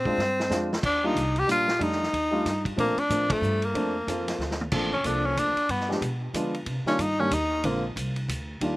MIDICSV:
0, 0, Header, 1, 6, 480
1, 0, Start_track
1, 0, Key_signature, -2, "major"
1, 0, Tempo, 324324
1, 1225, Time_signature, 3, 2, 24, 8
1, 12975, End_track
2, 0, Start_track
2, 0, Title_t, "Tenor saxophone"
2, 0, Program_c, 0, 66
2, 0, Note_on_c, 0, 60, 97
2, 1053, Note_off_c, 0, 60, 0
2, 1269, Note_on_c, 0, 62, 92
2, 1571, Note_on_c, 0, 63, 93
2, 1593, Note_off_c, 0, 62, 0
2, 2061, Note_on_c, 0, 67, 97
2, 2084, Note_off_c, 0, 63, 0
2, 2219, Note_off_c, 0, 67, 0
2, 2241, Note_on_c, 0, 65, 93
2, 2709, Note_on_c, 0, 63, 90
2, 2731, Note_off_c, 0, 65, 0
2, 3943, Note_off_c, 0, 63, 0
2, 4139, Note_on_c, 0, 58, 89
2, 4428, Note_on_c, 0, 62, 89
2, 4451, Note_off_c, 0, 58, 0
2, 4917, Note_on_c, 0, 57, 91
2, 4939, Note_off_c, 0, 62, 0
2, 5402, Note_on_c, 0, 58, 75
2, 5425, Note_off_c, 0, 57, 0
2, 6530, Note_off_c, 0, 58, 0
2, 7295, Note_on_c, 0, 61, 78
2, 7491, Note_on_c, 0, 62, 85
2, 7513, Note_off_c, 0, 61, 0
2, 7772, Note_on_c, 0, 61, 89
2, 7794, Note_off_c, 0, 62, 0
2, 7973, Note_on_c, 0, 62, 101
2, 7995, Note_off_c, 0, 61, 0
2, 8453, Note_on_c, 0, 59, 85
2, 8475, Note_off_c, 0, 62, 0
2, 8734, Note_off_c, 0, 59, 0
2, 10179, Note_on_c, 0, 61, 83
2, 10377, Note_on_c, 0, 63, 94
2, 10399, Note_off_c, 0, 61, 0
2, 10653, Note_on_c, 0, 61, 89
2, 10675, Note_off_c, 0, 63, 0
2, 10851, Note_on_c, 0, 63, 103
2, 10873, Note_off_c, 0, 61, 0
2, 11329, Note_on_c, 0, 58, 76
2, 11351, Note_off_c, 0, 63, 0
2, 11610, Note_off_c, 0, 58, 0
2, 12975, End_track
3, 0, Start_track
3, 0, Title_t, "Grand piano"
3, 0, Program_c, 1, 0
3, 78, Note_on_c, 1, 56, 69
3, 82, Note_on_c, 1, 60, 56
3, 90, Note_on_c, 1, 62, 61
3, 103, Note_on_c, 1, 65, 75
3, 246, Note_off_c, 1, 56, 0
3, 248, Note_off_c, 1, 60, 0
3, 251, Note_off_c, 1, 62, 0
3, 258, Note_off_c, 1, 65, 0
3, 733, Note_on_c, 1, 56, 64
3, 742, Note_on_c, 1, 60, 57
3, 750, Note_on_c, 1, 62, 63
3, 753, Note_on_c, 1, 65, 78
3, 1003, Note_off_c, 1, 56, 0
3, 1008, Note_off_c, 1, 60, 0
3, 1012, Note_off_c, 1, 62, 0
3, 1013, Note_off_c, 1, 65, 0
3, 1534, Note_on_c, 1, 55, 69
3, 1537, Note_on_c, 1, 58, 64
3, 1546, Note_on_c, 1, 62, 65
3, 1555, Note_on_c, 1, 65, 83
3, 1696, Note_off_c, 1, 55, 0
3, 1697, Note_off_c, 1, 58, 0
3, 1702, Note_off_c, 1, 62, 0
3, 1706, Note_off_c, 1, 65, 0
3, 2176, Note_on_c, 1, 55, 66
3, 2189, Note_on_c, 1, 58, 55
3, 2196, Note_on_c, 1, 62, 57
3, 2206, Note_on_c, 1, 65, 67
3, 2446, Note_off_c, 1, 55, 0
3, 2452, Note_off_c, 1, 58, 0
3, 2456, Note_off_c, 1, 62, 0
3, 2461, Note_off_c, 1, 65, 0
3, 2650, Note_on_c, 1, 55, 65
3, 2659, Note_on_c, 1, 57, 61
3, 2665, Note_on_c, 1, 62, 58
3, 2673, Note_on_c, 1, 63, 68
3, 2923, Note_off_c, 1, 55, 0
3, 2928, Note_off_c, 1, 57, 0
3, 2931, Note_off_c, 1, 62, 0
3, 2935, Note_off_c, 1, 63, 0
3, 3424, Note_on_c, 1, 55, 70
3, 3427, Note_on_c, 1, 57, 59
3, 3436, Note_on_c, 1, 62, 61
3, 3446, Note_on_c, 1, 65, 82
3, 3602, Note_off_c, 1, 55, 0
3, 3604, Note_off_c, 1, 57, 0
3, 3608, Note_off_c, 1, 62, 0
3, 3613, Note_off_c, 1, 65, 0
3, 4089, Note_on_c, 1, 53, 61
3, 4095, Note_on_c, 1, 57, 59
3, 4110, Note_on_c, 1, 60, 64
3, 4117, Note_on_c, 1, 62, 73
3, 4363, Note_off_c, 1, 53, 0
3, 4366, Note_off_c, 1, 57, 0
3, 4374, Note_off_c, 1, 60, 0
3, 4377, Note_off_c, 1, 62, 0
3, 4584, Note_on_c, 1, 53, 51
3, 4593, Note_on_c, 1, 57, 50
3, 4596, Note_on_c, 1, 60, 46
3, 4605, Note_on_c, 1, 62, 61
3, 5302, Note_off_c, 1, 53, 0
3, 5306, Note_off_c, 1, 57, 0
3, 5308, Note_off_c, 1, 60, 0
3, 5312, Note_off_c, 1, 62, 0
3, 5530, Note_on_c, 1, 53, 63
3, 5546, Note_on_c, 1, 57, 61
3, 5552, Note_on_c, 1, 60, 62
3, 5558, Note_on_c, 1, 62, 75
3, 5804, Note_off_c, 1, 53, 0
3, 5812, Note_off_c, 1, 57, 0
3, 5815, Note_off_c, 1, 60, 0
3, 5818, Note_off_c, 1, 62, 0
3, 6029, Note_on_c, 1, 53, 55
3, 6039, Note_on_c, 1, 69, 57
3, 6047, Note_on_c, 1, 60, 53
3, 6057, Note_on_c, 1, 65, 67
3, 6744, Note_off_c, 1, 53, 0
3, 6749, Note_off_c, 1, 69, 0
3, 6753, Note_off_c, 1, 60, 0
3, 6758, Note_off_c, 1, 65, 0
3, 6989, Note_on_c, 1, 53, 65
3, 6994, Note_on_c, 1, 58, 59
3, 7006, Note_on_c, 1, 60, 58
3, 7006, Note_on_c, 1, 62, 55
3, 7012, Note_on_c, 1, 69, 68
3, 7253, Note_off_c, 1, 53, 0
3, 7256, Note_off_c, 1, 58, 0
3, 7261, Note_off_c, 1, 62, 0
3, 7262, Note_off_c, 1, 60, 0
3, 7265, Note_off_c, 1, 69, 0
3, 7462, Note_on_c, 1, 53, 47
3, 7465, Note_on_c, 1, 58, 47
3, 7476, Note_on_c, 1, 60, 44
3, 7484, Note_on_c, 1, 62, 43
3, 7486, Note_on_c, 1, 69, 55
3, 8180, Note_off_c, 1, 53, 0
3, 8181, Note_off_c, 1, 58, 0
3, 8187, Note_off_c, 1, 60, 0
3, 8191, Note_off_c, 1, 62, 0
3, 8192, Note_off_c, 1, 69, 0
3, 8707, Note_on_c, 1, 53, 59
3, 8712, Note_on_c, 1, 56, 56
3, 8716, Note_on_c, 1, 59, 54
3, 8720, Note_on_c, 1, 62, 61
3, 8732, Note_on_c, 1, 67, 71
3, 8883, Note_off_c, 1, 53, 0
3, 8885, Note_off_c, 1, 56, 0
3, 8887, Note_off_c, 1, 59, 0
3, 8889, Note_off_c, 1, 62, 0
3, 8896, Note_off_c, 1, 67, 0
3, 9384, Note_on_c, 1, 53, 70
3, 9389, Note_on_c, 1, 56, 62
3, 9400, Note_on_c, 1, 62, 66
3, 9401, Note_on_c, 1, 59, 61
3, 9408, Note_on_c, 1, 65, 76
3, 9650, Note_off_c, 1, 53, 0
3, 9652, Note_off_c, 1, 56, 0
3, 9658, Note_off_c, 1, 59, 0
3, 9658, Note_off_c, 1, 62, 0
3, 9662, Note_off_c, 1, 65, 0
3, 10161, Note_on_c, 1, 51, 62
3, 10166, Note_on_c, 1, 55, 60
3, 10171, Note_on_c, 1, 58, 57
3, 10175, Note_on_c, 1, 62, 65
3, 10188, Note_on_c, 1, 65, 77
3, 10329, Note_off_c, 1, 51, 0
3, 10332, Note_off_c, 1, 55, 0
3, 10334, Note_off_c, 1, 58, 0
3, 10336, Note_off_c, 1, 62, 0
3, 10343, Note_off_c, 1, 65, 0
3, 10640, Note_on_c, 1, 51, 69
3, 10644, Note_on_c, 1, 55, 62
3, 10653, Note_on_c, 1, 62, 58
3, 10655, Note_on_c, 1, 58, 67
3, 10660, Note_on_c, 1, 67, 82
3, 10809, Note_off_c, 1, 51, 0
3, 10811, Note_off_c, 1, 55, 0
3, 10815, Note_off_c, 1, 62, 0
3, 10816, Note_off_c, 1, 58, 0
3, 10819, Note_off_c, 1, 67, 0
3, 11303, Note_on_c, 1, 50, 67
3, 11305, Note_on_c, 1, 56, 51
3, 11313, Note_on_c, 1, 58, 56
3, 11318, Note_on_c, 1, 65, 65
3, 11319, Note_on_c, 1, 60, 59
3, 11568, Note_off_c, 1, 50, 0
3, 11568, Note_off_c, 1, 56, 0
3, 11572, Note_off_c, 1, 58, 0
3, 11575, Note_off_c, 1, 65, 0
3, 11576, Note_off_c, 1, 60, 0
3, 12744, Note_on_c, 1, 51, 68
3, 12749, Note_on_c, 1, 55, 52
3, 12761, Note_on_c, 1, 58, 54
3, 12765, Note_on_c, 1, 62, 54
3, 12772, Note_on_c, 1, 65, 69
3, 12975, Note_off_c, 1, 51, 0
3, 12975, Note_off_c, 1, 55, 0
3, 12975, Note_off_c, 1, 58, 0
3, 12975, Note_off_c, 1, 62, 0
3, 12975, Note_off_c, 1, 65, 0
3, 12975, End_track
4, 0, Start_track
4, 0, Title_t, "Upright bass"
4, 0, Program_c, 2, 32
4, 0, Note_on_c, 2, 46, 92
4, 249, Note_off_c, 2, 46, 0
4, 259, Note_on_c, 2, 43, 87
4, 728, Note_off_c, 2, 43, 0
4, 734, Note_on_c, 2, 41, 81
4, 1206, Note_off_c, 2, 41, 0
4, 1227, Note_on_c, 2, 39, 81
4, 1693, Note_off_c, 2, 39, 0
4, 1706, Note_on_c, 2, 36, 93
4, 2173, Note_off_c, 2, 36, 0
4, 2192, Note_on_c, 2, 34, 83
4, 2656, Note_off_c, 2, 34, 0
4, 2664, Note_on_c, 2, 41, 78
4, 3132, Note_off_c, 2, 41, 0
4, 3153, Note_on_c, 2, 39, 76
4, 3617, Note_off_c, 2, 39, 0
4, 3633, Note_on_c, 2, 43, 90
4, 4098, Note_off_c, 2, 43, 0
4, 4106, Note_on_c, 2, 46, 81
4, 4381, Note_off_c, 2, 46, 0
4, 4584, Note_on_c, 2, 45, 88
4, 5042, Note_off_c, 2, 45, 0
4, 5051, Note_on_c, 2, 43, 91
4, 5526, Note_off_c, 2, 43, 0
4, 5544, Note_on_c, 2, 41, 81
4, 6013, Note_off_c, 2, 41, 0
4, 6024, Note_on_c, 2, 41, 80
4, 6480, Note_off_c, 2, 41, 0
4, 6489, Note_on_c, 2, 38, 74
4, 6965, Note_off_c, 2, 38, 0
4, 6986, Note_on_c, 2, 34, 80
4, 7139, Note_off_c, 2, 34, 0
4, 7139, Note_on_c, 2, 33, 50
4, 7294, Note_off_c, 2, 33, 0
4, 7303, Note_on_c, 2, 29, 56
4, 7455, Note_off_c, 2, 29, 0
4, 7464, Note_on_c, 2, 36, 80
4, 7933, Note_off_c, 2, 36, 0
4, 7942, Note_on_c, 2, 38, 84
4, 8218, Note_off_c, 2, 38, 0
4, 8423, Note_on_c, 2, 43, 80
4, 8887, Note_off_c, 2, 43, 0
4, 8896, Note_on_c, 2, 47, 83
4, 9367, Note_off_c, 2, 47, 0
4, 9377, Note_on_c, 2, 50, 84
4, 9848, Note_off_c, 2, 50, 0
4, 9863, Note_on_c, 2, 48, 81
4, 10120, Note_off_c, 2, 48, 0
4, 10338, Note_on_c, 2, 43, 91
4, 10808, Note_off_c, 2, 43, 0
4, 10821, Note_on_c, 2, 39, 92
4, 11289, Note_off_c, 2, 39, 0
4, 11298, Note_on_c, 2, 34, 86
4, 11767, Note_off_c, 2, 34, 0
4, 11780, Note_on_c, 2, 36, 87
4, 12247, Note_off_c, 2, 36, 0
4, 12258, Note_on_c, 2, 38, 88
4, 12726, Note_off_c, 2, 38, 0
4, 12739, Note_on_c, 2, 39, 79
4, 12975, Note_off_c, 2, 39, 0
4, 12975, End_track
5, 0, Start_track
5, 0, Title_t, "Muted upright bass strokes"
5, 4392, Note_on_c, 9, 29, 34
5, 4540, Note_off_c, 9, 29, 0
5, 8228, Note_on_c, 9, 29, 43
5, 8376, Note_off_c, 9, 29, 0
5, 10129, Note_on_c, 9, 29, 37
5, 10277, Note_off_c, 9, 29, 0
5, 12975, End_track
6, 0, Start_track
6, 0, Title_t, "Drums"
6, 81, Note_on_c, 9, 36, 52
6, 229, Note_off_c, 9, 36, 0
6, 278, Note_on_c, 9, 38, 44
6, 426, Note_off_c, 9, 38, 0
6, 588, Note_on_c, 9, 38, 58
6, 736, Note_off_c, 9, 38, 0
6, 751, Note_on_c, 9, 38, 57
6, 753, Note_on_c, 9, 44, 56
6, 899, Note_off_c, 9, 38, 0
6, 901, Note_off_c, 9, 44, 0
6, 1076, Note_on_c, 9, 38, 71
6, 1224, Note_off_c, 9, 38, 0
6, 1232, Note_on_c, 9, 36, 66
6, 1234, Note_on_c, 9, 49, 72
6, 1380, Note_off_c, 9, 36, 0
6, 1382, Note_off_c, 9, 49, 0
6, 1714, Note_on_c, 9, 36, 19
6, 1724, Note_on_c, 9, 44, 55
6, 1724, Note_on_c, 9, 51, 58
6, 1862, Note_off_c, 9, 36, 0
6, 1872, Note_off_c, 9, 44, 0
6, 1872, Note_off_c, 9, 51, 0
6, 2009, Note_on_c, 9, 51, 43
6, 2157, Note_off_c, 9, 51, 0
6, 2195, Note_on_c, 9, 36, 16
6, 2204, Note_on_c, 9, 44, 63
6, 2204, Note_on_c, 9, 51, 63
6, 2343, Note_off_c, 9, 36, 0
6, 2352, Note_off_c, 9, 44, 0
6, 2352, Note_off_c, 9, 51, 0
6, 2487, Note_on_c, 9, 38, 57
6, 2635, Note_off_c, 9, 38, 0
6, 2674, Note_on_c, 9, 36, 25
6, 2681, Note_on_c, 9, 51, 57
6, 2822, Note_off_c, 9, 36, 0
6, 2829, Note_off_c, 9, 51, 0
6, 2840, Note_on_c, 9, 38, 28
6, 2988, Note_off_c, 9, 38, 0
6, 3005, Note_on_c, 9, 38, 38
6, 3153, Note_off_c, 9, 38, 0
6, 3157, Note_on_c, 9, 36, 21
6, 3163, Note_on_c, 9, 51, 54
6, 3305, Note_off_c, 9, 36, 0
6, 3311, Note_off_c, 9, 51, 0
6, 3636, Note_on_c, 9, 36, 22
6, 3638, Note_on_c, 9, 38, 36
6, 3639, Note_on_c, 9, 44, 55
6, 3639, Note_on_c, 9, 51, 62
6, 3784, Note_off_c, 9, 36, 0
6, 3786, Note_off_c, 9, 38, 0
6, 3787, Note_off_c, 9, 44, 0
6, 3787, Note_off_c, 9, 51, 0
6, 3926, Note_on_c, 9, 36, 50
6, 3933, Note_on_c, 9, 51, 47
6, 4074, Note_off_c, 9, 36, 0
6, 4081, Note_off_c, 9, 51, 0
6, 4114, Note_on_c, 9, 36, 21
6, 4121, Note_on_c, 9, 51, 57
6, 4262, Note_off_c, 9, 36, 0
6, 4269, Note_off_c, 9, 51, 0
6, 4406, Note_on_c, 9, 51, 47
6, 4554, Note_off_c, 9, 51, 0
6, 4592, Note_on_c, 9, 36, 22
6, 4594, Note_on_c, 9, 44, 55
6, 4594, Note_on_c, 9, 51, 66
6, 4740, Note_off_c, 9, 36, 0
6, 4742, Note_off_c, 9, 44, 0
6, 4742, Note_off_c, 9, 51, 0
6, 4883, Note_on_c, 9, 36, 82
6, 4885, Note_on_c, 9, 51, 71
6, 5031, Note_off_c, 9, 36, 0
6, 5033, Note_off_c, 9, 51, 0
6, 5068, Note_on_c, 9, 44, 50
6, 5216, Note_off_c, 9, 44, 0
6, 5358, Note_on_c, 9, 51, 45
6, 5506, Note_off_c, 9, 51, 0
6, 5549, Note_on_c, 9, 36, 21
6, 5552, Note_on_c, 9, 51, 58
6, 5697, Note_off_c, 9, 36, 0
6, 5700, Note_off_c, 9, 51, 0
6, 6032, Note_on_c, 9, 36, 19
6, 6040, Note_on_c, 9, 44, 52
6, 6040, Note_on_c, 9, 51, 62
6, 6180, Note_off_c, 9, 36, 0
6, 6188, Note_off_c, 9, 44, 0
6, 6188, Note_off_c, 9, 51, 0
6, 6332, Note_on_c, 9, 38, 46
6, 6334, Note_on_c, 9, 51, 67
6, 6480, Note_off_c, 9, 38, 0
6, 6482, Note_off_c, 9, 51, 0
6, 6516, Note_on_c, 9, 38, 41
6, 6664, Note_off_c, 9, 38, 0
6, 6674, Note_on_c, 9, 38, 55
6, 6822, Note_off_c, 9, 38, 0
6, 6824, Note_on_c, 9, 47, 66
6, 6972, Note_off_c, 9, 47, 0
6, 6980, Note_on_c, 9, 49, 78
6, 6987, Note_on_c, 9, 36, 74
6, 7128, Note_off_c, 9, 49, 0
6, 7135, Note_off_c, 9, 36, 0
6, 7461, Note_on_c, 9, 44, 46
6, 7461, Note_on_c, 9, 51, 59
6, 7467, Note_on_c, 9, 36, 22
6, 7609, Note_off_c, 9, 44, 0
6, 7609, Note_off_c, 9, 51, 0
6, 7615, Note_off_c, 9, 36, 0
6, 7948, Note_on_c, 9, 36, 19
6, 7952, Note_on_c, 9, 44, 54
6, 7952, Note_on_c, 9, 51, 68
6, 8096, Note_off_c, 9, 36, 0
6, 8100, Note_off_c, 9, 44, 0
6, 8100, Note_off_c, 9, 51, 0
6, 8242, Note_on_c, 9, 51, 44
6, 8390, Note_off_c, 9, 51, 0
6, 8423, Note_on_c, 9, 51, 65
6, 8426, Note_on_c, 9, 36, 20
6, 8571, Note_off_c, 9, 51, 0
6, 8574, Note_off_c, 9, 36, 0
6, 8588, Note_on_c, 9, 38, 27
6, 8736, Note_off_c, 9, 38, 0
6, 8749, Note_on_c, 9, 38, 44
6, 8897, Note_off_c, 9, 38, 0
6, 8907, Note_on_c, 9, 36, 21
6, 8910, Note_on_c, 9, 44, 62
6, 8910, Note_on_c, 9, 51, 60
6, 9055, Note_off_c, 9, 36, 0
6, 9058, Note_off_c, 9, 44, 0
6, 9058, Note_off_c, 9, 51, 0
6, 9386, Note_on_c, 9, 36, 16
6, 9387, Note_on_c, 9, 44, 63
6, 9387, Note_on_c, 9, 51, 65
6, 9534, Note_off_c, 9, 36, 0
6, 9535, Note_off_c, 9, 44, 0
6, 9535, Note_off_c, 9, 51, 0
6, 9686, Note_on_c, 9, 51, 44
6, 9834, Note_off_c, 9, 51, 0
6, 9859, Note_on_c, 9, 51, 62
6, 9864, Note_on_c, 9, 36, 22
6, 10007, Note_off_c, 9, 51, 0
6, 10012, Note_off_c, 9, 36, 0
6, 10156, Note_on_c, 9, 38, 41
6, 10304, Note_off_c, 9, 38, 0
6, 10343, Note_on_c, 9, 44, 60
6, 10343, Note_on_c, 9, 51, 68
6, 10344, Note_on_c, 9, 36, 20
6, 10491, Note_off_c, 9, 44, 0
6, 10491, Note_off_c, 9, 51, 0
6, 10492, Note_off_c, 9, 36, 0
6, 10824, Note_on_c, 9, 36, 21
6, 10825, Note_on_c, 9, 44, 52
6, 10825, Note_on_c, 9, 51, 72
6, 10972, Note_off_c, 9, 36, 0
6, 10973, Note_off_c, 9, 44, 0
6, 10973, Note_off_c, 9, 51, 0
6, 11301, Note_on_c, 9, 51, 65
6, 11302, Note_on_c, 9, 36, 20
6, 11449, Note_off_c, 9, 51, 0
6, 11450, Note_off_c, 9, 36, 0
6, 11783, Note_on_c, 9, 36, 23
6, 11792, Note_on_c, 9, 44, 59
6, 11792, Note_on_c, 9, 51, 65
6, 11931, Note_off_c, 9, 36, 0
6, 11940, Note_off_c, 9, 44, 0
6, 11940, Note_off_c, 9, 51, 0
6, 12078, Note_on_c, 9, 51, 44
6, 12226, Note_off_c, 9, 51, 0
6, 12262, Note_on_c, 9, 36, 25
6, 12274, Note_on_c, 9, 44, 58
6, 12274, Note_on_c, 9, 51, 73
6, 12410, Note_off_c, 9, 36, 0
6, 12422, Note_off_c, 9, 44, 0
6, 12422, Note_off_c, 9, 51, 0
6, 12741, Note_on_c, 9, 36, 17
6, 12745, Note_on_c, 9, 51, 64
6, 12889, Note_off_c, 9, 36, 0
6, 12893, Note_off_c, 9, 51, 0
6, 12975, End_track
0, 0, End_of_file